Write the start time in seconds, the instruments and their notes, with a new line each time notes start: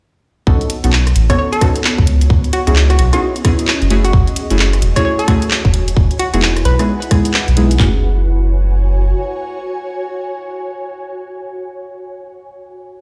0.47 sub bass B1, ambient pad B3, synth stab B3 C#4 D#4 F#4 A4, kick
0.61 closed hi-hat
0.70 closed hi-hat
0.84 sub bass B1, synth stab B3 C#4 D#4 F#4 A4, closed hi-hat
0.93 clap
1.07 cross-stick, closed hi-hat
1.16 sub bass A1, ambient pad F#4, closed hi-hat
1.20 ambient pad C#5
1.30 synth stab B3 C#4 D#4 F#4 A4, synth pluck C#5, kick, cross-stick, closed hi-hat
1.39 synth pluck C#5
1.52 synth pluck A4, closed hi-hat
1.61 synth stab B3 C#4 D#4 F#4 A4, kick, cross-stick, closed hi-hat
1.76 closed hi-hat
1.84 clap
1.98 sub bass C#2, kick
2.07 ambient pad C#4, closed hi-hat
2.21 closed hi-hat
2.30 sub bass C#2, kick
2.44 closed hi-hat
2.53 synth pluck F#4, closed hi-hat
2.67 sub bass C#2, synth stab B3 C#4 D#4 E4 G#4, synth pluck F#4, ambient pad G#4, closed hi-hat
2.76 clap
2.90 synth pluck F#4, ambient pad D#5, cross-stick, closed hi-hat
2.99 sub bass B1, synth pluck F#4, closed hi-hat
3.13 synth stab B3 C#4 D#4 E4 G#4, synth pluck F#4, cross-stick, closed hi-hat
3.36 closed hi-hat
3.45 synth stab B3 C#4 D#4 E4 G#4, kick, cross-stick, closed hi-hat
3.59 closed hi-hat
3.68 clap
3.82 sub bass F#1, closed hi-hat
3.90 synth stab A3 C#4 E4 F#4 G#4, ambient pad F#4, closed hi-hat
4.05 synth pluck F#4, closed hi-hat
4.13 sub bass F#1, kick
4.27 closed hi-hat
4.36 closed hi-hat
4.50 sub bass F#1, synth stab A3 C#4 E4 F#4 G#4, closed hi-hat
4.58 ambient pad C#5, clap
4.73 ambient pad G#5, cross-stick, closed hi-hat
4.82 sub bass E1, closed hi-hat
4.96 synth stab A3 C#4 E4 F#4 G#4, synth pluck C#5, kick, cross-stick, closed hi-hat
5.05 synth pluck C#5
5.19 synth pluck A4, closed hi-hat
5.28 synth stab A3 C#4 E4 F#4 G#4, kick, cross-stick, closed hi-hat
5.42 closed hi-hat
5.51 clap
5.65 sub bass E1, kick
5.74 ambient pad E4, closed hi-hat
5.88 closed hi-hat
5.97 sub bass E1, ambient pad F#5, kick
6.11 closed hi-hat
6.19 synth pluck F#4, closed hi-hat
6.33 sub bass E1, synth stab G#3 B3 D#4 E4 G#4, synth pluck F#4, ambient pad B4, closed hi-hat
6.42 clap
6.56 cross-stick, closed hi-hat
6.65 sub bass B1, synth pluck B4, closed hi-hat
6.79 synth stab G#3 B3 D#4 E4 G#4, cross-stick, closed hi-hat
7.02 closed hi-hat
7.11 synth stab G#3 B3 D#4 E4 G#4, kick, cross-stick, closed hi-hat
7.25 closed hi-hat
7.34 clap
7.48 sub bass B1, closed hi-hat
7.57 synth stab G#3 B3 D#4 E4 G#4, closed hi-hat
7.71 closed hi-hat
7.80 sub bass F#1, synth stab A3 C#4 E4 F#4 G#4, ambient pad F#4, kick, clap, floor tom
7.88 ambient pad C#5
7.96 ambient pad G#5